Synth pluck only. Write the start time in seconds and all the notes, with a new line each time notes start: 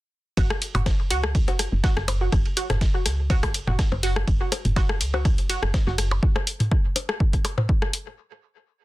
0.37 F#4
0.75 F#4
1.11 F#4
1.48 F#4
1.84 F#4
2.21 F#4
2.57 F#4
2.94 F#4
3.30 F#4
3.67 F#4
4.03 F#4
4.41 F#4
4.76 F#4
5.14 F#4
5.50 F#4
5.87 F#4